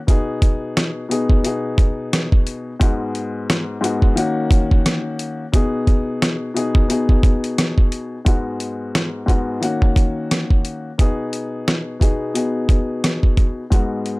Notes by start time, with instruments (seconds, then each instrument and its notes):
0.07 upright piano B2 B3 D#4 G#4, kick, closed hi-hat
0.42 kick, closed hi-hat
0.77 cross-stick, snare, closed hi-hat
1.09 upright piano B2 B3 D#4 G#4, closed hi-hat
1.30 kick
1.44 upright piano B2 B3 D#4 G#4, closed hi-hat
1.78 kick, closed hi-hat
2.13 cross-stick, snare, closed hi-hat
2.32 kick
2.47 closed hi-hat
2.80 upright piano G#2 G#3 B3 F#4, kick, closed hi-hat
3.15 closed hi-hat
3.50 cross-stick, snare, closed hi-hat
3.81 upright piano G#2 G#3 B3 F#4, closed hi-hat
4.02 kick
4.15 upright piano D#3 A#3 C#4 F#4, closed hi-hat
4.51 kick, closed hi-hat
4.71 kick
4.86 cross-stick, snare, closed hi-hat
5.19 closed hi-hat
5.52 upright piano B2 B3 D#4 G#4, kick, closed hi-hat
5.87 kick, closed hi-hat
6.22 cross-stick, snare, closed hi-hat
6.54 upright piano B2 B3 D#4 G#4, closed hi-hat
6.75 kick
6.89 upright piano B2 B3 D#4 G#4, closed hi-hat
7.09 kick
7.23 kick, closed hi-hat
7.44 closed hi-hat
7.58 cross-stick, snare, closed hi-hat
7.78 kick
7.92 closed hi-hat
8.25 upright piano G#2 G#3 B3 F#4, kick, closed hi-hat
8.60 closed hi-hat
8.95 cross-stick, snare, closed hi-hat
9.26 upright piano G#2 G#3 B3 F#4, kick, closed hi-hat
9.61 upright piano D#3 A#3 C#4 F#4, closed hi-hat
9.82 kick
9.96 kick, closed hi-hat
10.31 cross-stick, snare, closed hi-hat
10.50 kick
10.65 closed hi-hat
10.98 upright piano B2 B3 D#4 G#4, kick, closed hi-hat
11.33 closed hi-hat
11.68 cross-stick, snare, closed hi-hat
12.00 upright piano B2 B3 D#4 G#4, kick, closed hi-hat
12.34 upright piano B2 B3 D#4 G#4, closed hi-hat
12.69 kick, closed hi-hat
13.04 cross-stick, snare, closed hi-hat
13.23 kick
13.37 kick, closed hi-hat
13.70 upright piano G#2 G#3 B3 F#4, kick, closed hi-hat
14.06 closed hi-hat